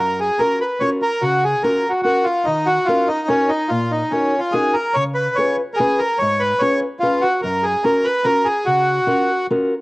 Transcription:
0.00 0.29 F#2 medium
0.00 0.20 A#4 medium
0.20 0.41 G#4 medium
0.39 0.61 C#4 soft
0.39 0.61 F4 medium
0.39 0.61 F#4 soft
0.39 0.59 A#4 medium
0.39 0.61 A#4 medium
0.61 0.82 B4 medium
0.80 1.02 C#4 medium
0.80 1.03 F4 soft
0.80 1.03 F#4 soft
0.80 1.03 A#4 medium
0.80 0.90 C#5 medium
1.02 1.23 A#4 loud
1.22 1.53 C#3 medium
1.22 1.44 F#4 medium
1.44 1.63 G#4 medium
1.63 1.85 C#4 medium
1.63 1.85 F4 medium
1.63 1.85 F#4 soft
1.63 1.92 A#4 medium
1.63 1.85 A#4 medium
1.90 2.01 F#4 medium
2.03 2.26 C#4 medium
2.03 2.26 F4 soft
2.03 2.26 F#4 medium
2.03 2.26 F#4 soft
2.03 2.26 A#4 medium
2.24 2.46 F4 medium
2.45 2.78 D#3 medium
2.45 2.67 D#4 medium
2.66 2.87 F#4 medium
2.85 3.09 C#4 medium
2.85 3.09 D#4 soft
2.85 3.08 F4 medium
2.85 3.09 F#4 medium
2.85 3.09 A#4 medium
3.08 3.29 D#4 medium
3.28 3.50 C#4 medium
3.28 3.50 D#4 medium
3.28 3.50 F#4 medium
3.28 3.50 A#4 medium
3.49 3.70 D#4 medium
3.69 4.01 A#2 medium
3.69 3.92 F4 medium
3.91 4.12 D#4 medium
4.11 4.40 C#4 medium
4.11 4.33 C#4 medium
4.11 4.34 D#4 soft
4.11 4.34 F#4 soft
4.11 4.34 A#4 medium
4.39 4.54 F4 medium
4.52 4.75 C#4 soft
4.52 4.75 D#4 soft
4.52 4.75 F#4 soft
4.52 4.75 G#4 medium
4.52 4.75 A#4 medium
4.73 4.95 A#4 medium
4.94 5.27 C#3 medium
4.94 5.04 C#5 medium
5.15 5.37 B4 medium
5.35 5.59 C#4 medium
5.35 5.59 F4 soft
5.35 5.59 G#4 medium
5.35 5.59 B4 medium
5.35 5.56 C#5 medium
5.74 6.00 G#4 medium
5.74 5.79 A#4 soft
5.79 6.01 C#4 medium
5.79 6.01 F4 soft
5.79 6.01 G#4 medium
5.79 6.01 B4 medium
5.99 6.19 A#4 medium
6.19 6.52 G#2 medium
6.19 6.42 C#5 medium
6.40 6.62 B4 medium
6.59 6.83 C#4 medium
6.59 6.83 F4 soft
6.59 6.83 G#4 soft
6.59 6.83 B4 medium
6.59 6.80 C#5 medium
7.00 7.24 C#4 medium
7.00 7.23 F4 medium
7.00 7.24 F4 medium
7.00 7.24 G#4 soft
7.00 7.24 B4 medium
7.21 7.41 F#4 medium
7.42 7.74 F#2 medium
7.42 7.65 A#4 medium
7.63 7.84 G#4 medium
7.83 8.06 C#4 medium
7.83 8.06 F4 soft
7.83 8.06 F#4 medium
7.83 8.06 A#4 medium
8.04 8.26 B4 medium
8.24 8.47 C#4 medium
8.24 8.47 F4 medium
8.24 8.47 F#4 medium
8.24 8.47 A#4 medium
8.45 8.67 G#4 medium
8.65 8.98 C#3 medium
8.65 9.47 F#4 medium
9.07 9.30 C#4 medium
9.07 9.30 F4 soft
9.07 9.30 F#4 soft
9.07 9.30 A#4 medium
9.51 9.73 C#4 medium
9.51 9.73 F4 medium
9.51 9.73 F#4 medium
9.51 9.73 A#4 medium

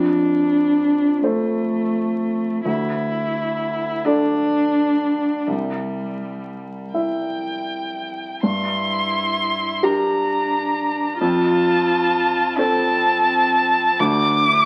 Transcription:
0.00 2.61 F2 soft
0.00 1.23 D4 medium
1.23 2.63 A3 medium
1.23 2.62 A4 soft
1.23 2.62 C5 soft
2.65 5.43 D2 soft
2.65 4.07 E4 medium
4.05 5.48 D4 medium
4.05 5.43 A4 soft
4.05 5.43 D5 soft
5.47 8.39 C2 soft
5.47 6.94 G3 medium
6.93 8.39 E4 soft
6.93 8.39 E5 soft
6.93 8.38 G5 medium
8.42 11.17 G2 soft
8.42 9.85 E4 medium
8.42 9.85 C6 medium
9.83 11.19 D4 medium
9.83 11.17 G4 soft
9.83 11.17 A#4 soft
9.83 11.20 A#5 medium
11.20 13.96 F2 medium
11.20 12.59 F4 medium
11.20 12.56 A5 medium
12.58 14.02 C4 medium
12.58 13.96 A4 soft
12.58 13.96 C5 soft
12.58 14.01 A5 loud
14.00 14.65 D2 medium
14.00 14.48 D4 medium
14.00 14.65 D6 loud
14.46 14.65 E4 medium

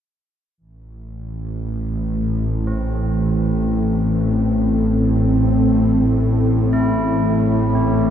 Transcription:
0.58 8.10 A1 medium
0.58 8.10 A2 medium
0.58 8.10 E3 medium
1.96 8.10 A3 medium
2.26 8.10 A4 medium
2.42 8.10 C4 medium
2.67 8.10 C4 soft
6.73 8.10 E4 medium
7.75 8.10 G4 soft

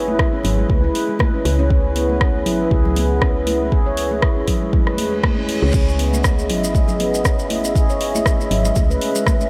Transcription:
0.00 0.28 G#1 medium
0.00 5.70 E4 medium
0.00 9.50 G#4 medium
0.00 5.70 B4 medium
0.08 0.14 E4 medium
0.08 high conga medium
0.19 kick loud
0.19 cross-stick loud
0.33 0.43 C#4 medium
0.44 0.65 G#1 medium
0.44 open hi-hat medium
0.44 low conga medium
0.58 0.69 G#3 medium
0.69 0.90 C#2 loud
0.69 kick loud
0.69 high conga medium
0.84 0.94 B4 medium
0.95 open hi-hat medium
1.09 1.19 G#3 medium
1.19 kick loud
1.19 cross-stick loud
1.19 high conga loud
1.34 1.44 C#4 medium
1.45 2.47 C#2 loud
1.45 open hi-hat medium
1.45 high conga medium
1.59 1.69 C#4 loud
1.59 high conga medium
1.70 1.84 C#4 loud
1.70 kick loud
1.95 2.08 B3 loud
1.95 open hi-hat medium
2.09 high conga medium
2.21 2.34 C#4 medium
2.21 kick loud
2.21 cross-stick loud
2.46 2.66 G#1 medium
2.46 2.54 E4 medium
2.46 open hi-hat medium
2.46 low conga medium
2.71 4.49 C#2 loud
2.71 2.85 G#4 loud
2.71 kick loud
2.71 high conga medium
2.85 low conga loud
2.96 3.09 B3 loud
2.96 open hi-hat medium
2.96 high conga medium
3.22 3.35 C#4 medium
3.22 kick loud
3.22 cross-stick loud
3.47 3.60 E4 medium
3.47 open hi-hat medium
3.47 high conga medium
3.72 3.85 G#4 loud
3.72 kick loud
3.86 3.97 C#5 medium
3.97 open hi-hat medium
4.11 4.17 E4 medium
4.11 high conga medium
4.22 kick loud
4.22 cross-stick loud
4.37 4.47 C#4 medium
4.48 4.75 G#1 medium
4.48 kick medium
4.48 open hi-hat medium
4.48 low conga loud
4.62 4.72 G#3 medium
4.73 5.58 E2 medium
4.73 kick loud
4.73 reverse cymbal medium
4.73 high conga medium
4.73 low conga medium
4.87 4.98 B4 medium
4.87 cross-stick medium
4.97 open hi-hat medium
4.97 high conga medium
5.12 5.23 G#3 medium
5.23 kick loud
5.23 cross-stick loud
5.23 high conga loud
5.38 5.48 C#4 medium
5.49 open hi-hat medium
5.49 high conga medium
5.62 5.71 C#2 medium
5.62 5.73 C#4 loud
5.62 high conga medium
5.74 6.51 C#2 loud
5.74 9.50 C#4 medium
5.74 5.87 C#4 loud
5.74 9.50 D#5 medium
5.74 9.50 E5 loud
5.74 kick loud
5.74 crash medium
5.74 maracas medium
5.89 maracas soft
5.99 6.12 B3 loud
5.99 open hi-hat medium
6.13 high conga medium
6.13 maracas medium
6.24 6.38 C#4 medium
6.24 kick loud
6.24 cross-stick loud
6.24 maracas medium
6.39 maracas soft
6.49 8.35 G#1 medium
6.49 6.57 E4 medium
6.49 open hi-hat loud
6.49 low conga loud
6.64 maracas medium
6.74 6.88 G#4 loud
6.74 kick loud
6.74 high conga medium
6.74 maracas medium
6.88 low conga loud
6.88 maracas soft
7.00 7.13 B3 loud
7.00 open hi-hat loud
7.00 high conga medium
7.14 maracas medium
7.25 7.39 C#4 medium
7.25 kick loud
7.25 cross-stick loud
7.25 maracas medium
7.39 maracas soft
7.50 7.63 E4 medium
7.50 open hi-hat medium
7.50 high conga medium
7.64 maracas medium
7.75 7.89 G#4 loud
7.75 kick loud
7.75 maracas medium
7.90 8.00 C#5 medium
7.90 maracas soft
8.01 open hi-hat loud
8.15 8.21 E4 medium
8.15 high conga medium
8.15 maracas medium
8.26 kick loud
8.26 cross-stick loud
8.26 maracas medium
8.40 8.50 C#4 medium
8.40 maracas soft
8.51 8.71 G#1 medium
8.51 open hi-hat loud
8.51 low conga loud
8.65 8.76 G#3 medium
8.65 maracas medium
8.76 8.97 C#2 loud
8.76 kick loud
8.76 high conga medium
8.76 maracas medium
8.90 9.01 B4 medium
8.90 maracas soft
9.01 open hi-hat loud
9.15 9.26 G#3 medium
9.15 maracas medium
9.26 kick loud
9.26 cross-stick loud
9.26 high conga loud
9.26 maracas medium
9.41 9.50 C#4 medium
9.41 maracas soft

